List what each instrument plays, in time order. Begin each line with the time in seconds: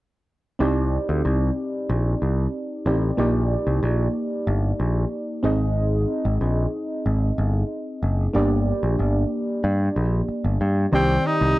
0.59 picked electric bass C2, fm electric piano C4 D#4 G4 D5
1.09 picked electric bass D2
1.25 picked electric bass C2
1.89 picked electric bass A#1
2.22 picked electric bass C2
2.86 picked electric bass A1, fm electric piano C4 D#4 G4 D5
3.17 picked electric bass A#1, fm electric piano A#3 D#4 G4 D5
3.67 picked electric bass C2
3.83 picked electric bass A#1
4.47 picked electric bass G1
4.80 picked electric bass A#1
5.43 picked electric bass G#1, fm electric piano C4 D#4 G#4 D#5
6.25 picked electric bass G#1
6.41 picked electric bass A#1
7.06 picked electric bass G#1
7.38 picked electric bass G1
8.03 picked electric bass F#1
8.33 picked electric bass G1, fm electric piano A#3 D4 G4 D5
8.83 picked electric bass A#1
8.99 picked electric bass G1
9.64 picked electric bass G2
9.96 picked electric bass A#1
10.28 muted picked electric bass stroke
10.44 picked electric bass G1
10.61 picked electric bass G2
10.92 picked electric bass C2, fm electric piano D#3 C4 G4 D5, tenor saxophone C4
11.27 tenor saxophone D#4
11.41 picked electric bass C2